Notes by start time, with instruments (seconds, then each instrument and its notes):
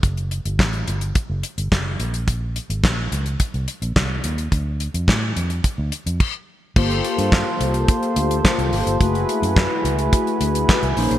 0.03 fingered electric bass F#1, kick, closed hi-hat
0.17 closed hi-hat
0.31 closed hi-hat
0.45 fingered electric bass G1, closed hi-hat
0.59 fingered electric bass A1, kick, snare, clap
0.73 closed hi-hat
0.88 fingered electric bass G1, closed hi-hat
1.01 closed hi-hat
1.15 kick, closed hi-hat
1.30 fingered electric bass F#1
1.43 closed hi-hat
1.58 fingered electric bass G1, closed hi-hat
1.72 fingered electric bass F#1, kick, snare, clap
2.00 fingered electric bass A#1, closed hi-hat
2.14 closed hi-hat
2.28 kick, closed hi-hat
2.56 closed hi-hat
2.70 fingered electric bass G#1, closed hi-hat
2.84 fingered electric bass A#1, kick, snare, clap
3.12 fingered electric bass C#2, closed hi-hat
3.26 closed hi-hat
3.40 kick, closed hi-hat
3.54 fingered electric bass C2, closed hi-hat
3.68 closed hi-hat
3.82 fingered electric bass A#1, closed hi-hat
3.96 fingered electric bass C2, kick, snare, clap
4.24 fingered electric bass D#2, closed hi-hat
4.38 closed hi-hat
4.52 fingered electric bass D2, kick, closed hi-hat
4.80 closed hi-hat
4.94 fingered electric bass F2, closed hi-hat
5.08 fingered electric bass A2, kick, snare, clap
5.36 fingered electric bass F2, closed hi-hat
5.50 closed hi-hat
5.64 kick, closed hi-hat
5.78 fingered electric bass D2
5.92 closed hi-hat
6.06 fingered electric bass F2, closed hi-hat
6.20 kick, crash
6.76 fingered electric bass G1, analog polysynth A#3 F4 G4 A4 C5, glass harmonica A#3 F5 A5 C6, kick, crash
6.91 closed hi-hat
7.04 closed hi-hat
7.18 fingered electric bass G2, closed hi-hat
7.32 kick, snare, clap
7.60 fingered electric bass C2, closed hi-hat
7.74 closed hi-hat
7.88 kick, closed hi-hat
8.03 closed hi-hat
8.16 fingered electric bass D2, closed hi-hat
8.31 closed hi-hat
8.45 kick, snare, clap
8.58 fingered electric bass C2, closed hi-hat
8.72 fingered electric bass G#1, open hi-hat
8.87 fingered electric bass G1, closed hi-hat
9.00 fingered electric bass F#1, analog polysynth A3 E4 F#4 G#4 B4, glass harmonica A3 E5 G#5 B5, kick, closed hi-hat
9.15 closed hi-hat
9.29 closed hi-hat
9.42 fingered electric bass F#2, closed hi-hat
9.56 kick, snare, clap
9.85 fingered electric bass C#2, closed hi-hat
9.99 closed hi-hat
10.13 kick, closed hi-hat
10.27 closed hi-hat
10.41 fingered electric bass D2, closed hi-hat
10.55 closed hi-hat
10.69 kick, snare, clap
10.83 fingered electric bass C2, closed hi-hat
10.96 fingered electric bass A#1, analog polysynth A#3 C#4 D#4 G#4 C5, glass harmonica A#4 D#5 A#5, open hi-hat
11.11 fingered electric bass B1, closed hi-hat